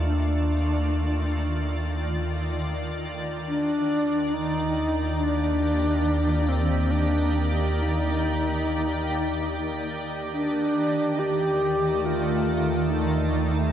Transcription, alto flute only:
0.05 1.72 D4 medium
3.48 4.35 D4 medium
4.34 5.21 D#4 loud
5.20 6.50 D4 medium
6.49 6.93 C4 medium
6.91 7.50 D4 loud
7.78 9.88 D#4 medium
10.33 11.21 D4 medium
11.19 12.07 G4 medium
12.06 12.92 F4 medium
12.90 13.72 D#4 medium

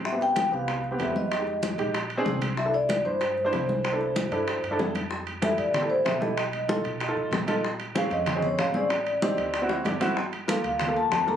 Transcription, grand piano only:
0.12 0.40 B3 medium
0.12 0.40 C4 medium
0.12 0.40 G4 medium
0.51 0.79 B3 medium
0.51 0.80 C4 medium
0.51 0.80 G4 medium
0.91 1.24 B3 medium
0.91 1.25 C4 medium
0.91 1.25 G4 medium
1.38 1.66 G#3 medium
1.38 1.66 D#4 medium
1.38 1.67 G4 medium
1.78 1.94 G#3 medium
1.78 1.95 D#4 medium
1.78 1.95 G4 medium
2.17 2.51 C4 loud
2.17 2.51 D4 medium
2.17 2.52 G#4 loud
2.65 2.93 D4 medium
2.65 2.93 E4 medium
2.65 2.93 A4 medium
3.05 3.33 D4 medium
3.05 3.33 E4 medium
3.05 3.33 C5 medium
3.45 3.78 D4 medium
3.45 3.78 E4 medium
3.45 3.79 C5 loud
3.92 4.20 D4 medium
3.92 4.20 E4 medium
3.92 4.20 A4 medium
4.32 4.60 D4 medium
4.32 4.60 E4 medium
4.32 4.60 A4 medium
4.71 5.04 D4 medium
4.71 5.05 E4 medium
4.71 5.05 A4 loud
5.42 5.70 E4 medium
5.42 5.70 G4 medium
5.42 5.70 A4 medium
5.81 6.09 E4 medium
5.81 6.09 G4 medium
5.81 6.10 A4 medium
6.21 6.37 E4 medium
6.21 6.37 G4 medium
6.21 6.38 A4 medium
6.68 6.96 D#4 medium
6.68 6.97 F4 medium
6.68 6.97 A4 loud
7.08 7.36 D#4 medium
7.08 7.36 F4 medium
7.08 7.36 A4 loud
7.47 7.63 D#4 loud
7.47 7.64 F4 medium
7.47 7.64 A4 loud
7.95 8.23 C4 medium
7.95 8.23 C#4 medium
7.95 8.23 G#4 medium
8.34 8.62 C4 medium
8.34 8.63 C#4 medium
8.34 8.63 G#4 medium
8.74 8.90 C4 medium
8.74 8.91 C#4 medium
8.74 8.91 G#4 medium
9.22 9.50 C4 loud
9.22 9.50 D#4 medium
9.22 9.50 G4 loud
9.61 9.89 C4 medium
9.61 9.89 E4 medium
9.61 9.89 F#4 loud
9.85 10.00 D5 medium
10.00 10.16 C4 medium
10.00 10.17 E4 medium
10.00 10.17 F#4 loud
10.00 10.16 F#5 medium
10.48 10.76 A#3 medium
10.48 10.76 F4 medium
10.48 10.76 A4 medium
10.87 11.15 A#3 medium
10.87 11.15 F4 medium
10.87 11.16 A4 medium
11.27 11.36 A#3 medium
11.27 11.36 F4 medium
11.27 11.36 A4 medium

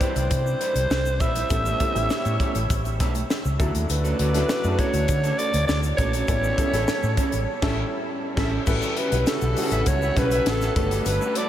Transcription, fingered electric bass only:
0.16 0.27 C2 medium
0.31 0.53 C3 medium
0.75 0.86 C2 medium
0.90 1.20 C2 medium
1.20 1.43 A#1 medium
1.50 1.73 A1 loud
1.96 2.07 A1 loud
2.11 muted fingered electric bass stroke soft
2.25 2.36 A2 medium
2.55 2.66 A1 medium
2.70 3.00 A1 medium
3.00 3.22 B1 medium
3.45 3.56 C#2 medium
3.60 3.71 D2 loud
3.75 3.86 D#2 medium
3.90 4.12 D2 loud
4.19 4.42 D2 medium
4.64 4.75 F#2 medium
4.93 5.05 D2 medium
5.09 5.31 D3 medium
5.54 5.65 D2 medium
5.68 5.91 D2 medium
5.98 6.21 A#1 loud
6.28 6.50 A1 loud
6.73 6.84 A1 medium
7.03 7.14 A2 loud
7.33 7.44 A1 medium
7.62 7.83 A1 loud
8.37 8.57 A1 loud
8.67 8.78 A1 loud
9.12 9.23 B1 medium
9.42 9.53 B1 medium
9.71 9.82 A1 medium
9.86 10.09 C#2 loud
10.16 10.39 B1 medium
10.46 10.68 A1 medium
10.76 10.98 G1 loud
11.06 11.17 G1 loud

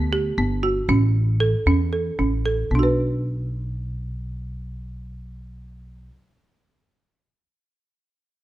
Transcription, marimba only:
0.13 0.33 G4 medium
0.38 0.59 B3 medium
0.63 0.84 F#4 medium
0.89 1.31 C#4 medium
1.40 1.61 A4 medium
1.67 1.87 C#4 medium
1.93 2.13 A4 soft
2.19 2.40 C#4 soft
2.46 2.66 A4 soft
2.71 6.09 B3 soft
2.71 6.13 D4 soft
2.79 6.17 F#4 soft
2.79 6.21 B4 soft

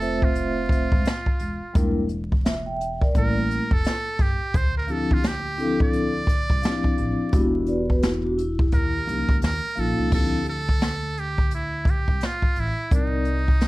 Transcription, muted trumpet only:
0.00 0.25 A4 loud
0.24 1.97 F4 medium
3.17 3.75 A#4 loud
3.73 4.23 A4 loud
4.21 4.58 G4 medium
4.56 4.77 C5 loud
4.77 4.93 A#4 medium
4.91 5.15 A4 medium
5.13 5.28 F4 medium
5.27 5.82 G4 loud
5.82 7.52 D5 loud
8.74 9.39 A#4 medium
9.45 9.81 A#4 loud
9.79 10.13 A4 loud
10.14 10.46 A4 loud
10.49 11.21 A4 loud
11.19 11.53 G4 loud
11.54 11.92 E4 medium
11.90 12.27 G4 medium
12.25 12.61 F4 medium
12.60 12.93 E4 medium
12.95 13.68 D#4 medium

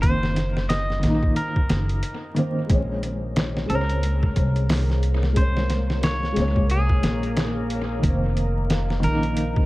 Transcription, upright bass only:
0.00 1.00 F#1 loud
1.03 1.33 A#1 medium
1.70 2.00 F#1 medium
2.70 3.67 A#1 loud
3.70 4.34 C#2 medium
4.36 6.34 C2 medium
6.36 6.70 C#2 medium
6.70 7.00 C2 loud
7.03 8.00 A#1 loud
8.03 9.00 F1 loud
9.03 9.66 A#1 medium

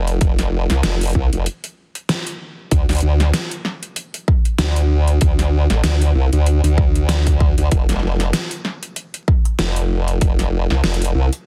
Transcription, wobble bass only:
0.00 0.19 F1 loud
0.21 0.67 F1 loud
0.71 0.82 C2 loud
0.84 1.13 F1 medium
1.15 1.30 C2 medium
1.33 1.46 F1 loud
2.72 2.86 D2 loud
2.89 3.00 D2 loud
3.03 3.32 D2 loud
4.58 5.19 D2 loud
5.22 5.68 D2 loud
5.70 5.82 A1 medium
5.84 6.13 D2 loud
6.15 6.30 C2 loud
6.33 6.61 D2 loud
6.64 7.55 D2 loud
7.58 7.69 D2 loud
7.72 7.86 F1 loud
7.89 8.00 F1 loud
8.02 8.32 F1 medium
9.59 10.19 F1 loud
10.22 10.68 F1 loud
10.70 10.82 C2 loud
10.84 11.13 F1 loud
11.15 11.30 C2 medium

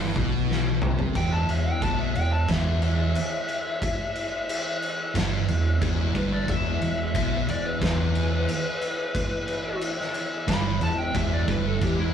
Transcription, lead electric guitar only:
1.16 1.32 G5 medium
1.33 1.49 A5 medium
1.50 1.66 E5 medium
1.66 1.82 G5 loud
1.83 1.99 A5 medium
1.99 2.15 E5 medium
2.16 2.32 G5 medium
2.33 2.48 A5 medium
2.50 2.81 E5 medium
2.83 4.78 E5 medium
6.17 6.32 B4 loud
6.32 6.49 D5 medium
6.49 7.46 E5 loud
7.50 7.66 D5 medium
7.66 7.82 B4 medium
7.83 9.78 B4 loud
10.49 10.81 B5 loud
10.83 10.98 A5 medium
10.98 11.14 G5 medium
11.17 11.33 E5 medium
11.33 11.49 D5 medium
11.50 11.67 B4 medium
11.67 11.84 A4 medium
11.84 11.99 G4 loud
11.99 12.14 E4 medium

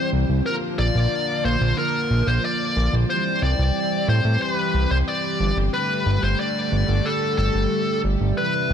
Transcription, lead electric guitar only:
0.46 0.55 A#4 loud
0.79 1.45 D5 loud
1.45 1.76 C5 loud
1.78 2.29 A#4 loud
2.27 2.44 C5 loud
2.44 2.93 D5 loud
3.10 3.43 C5 loud
3.43 4.09 D5 loud
4.09 4.42 C5 loud
4.42 4.53 C5 medium
4.53 4.91 B4 medium
4.91 4.96 C5 loud
5.08 5.57 D5 loud
5.74 6.23 B4 loud
6.24 6.39 C5 medium
6.40 7.07 D5 loud
7.06 7.37 A4 medium
7.38 8.00 A4 medium
8.38 8.73 B4 medium

